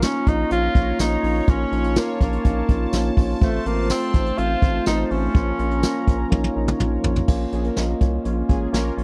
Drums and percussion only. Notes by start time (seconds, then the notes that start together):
0.02 snare, closed hi-hat, tambourine
0.27 kick, closed hi-hat
0.51 closed hi-hat
0.75 kick, closed hi-hat
0.99 snare, closed hi-hat, tambourine
1.24 open hi-hat
1.48 kick, closed hi-hat
1.72 closed hi-hat
1.84 closed hi-hat
1.96 snare, closed hi-hat, tambourine
2.21 kick, closed hi-hat
2.33 closed hi-hat
2.44 kick, closed hi-hat
2.69 kick, closed hi-hat
2.93 snare, closed hi-hat, tambourine
3.17 kick, open hi-hat
3.42 kick, closed hi-hat
3.66 closed hi-hat
3.90 snare, closed hi-hat, tambourine
4.14 kick, closed hi-hat
4.26 closed hi-hat
4.38 closed hi-hat
4.62 kick, closed hi-hat
4.86 snare, closed hi-hat, tambourine
5.11 open hi-hat
5.35 kick, closed hi-hat
5.59 closed hi-hat
5.71 closed hi-hat
5.83 snare, closed hi-hat, tambourine
6.07 kick, closed hi-hat
6.32 kick, high tom
6.44 high tom
6.68 mid tom
6.80 mid tom
7.04 floor tom
7.16 floor tom
7.28 kick, crash
7.52 closed hi-hat
7.64 closed hi-hat
7.76 snare, closed hi-hat
8.01 kick, closed hi-hat
8.25 closed hi-hat
8.49 kick, closed hi-hat
8.74 snare, closed hi-hat
8.98 open hi-hat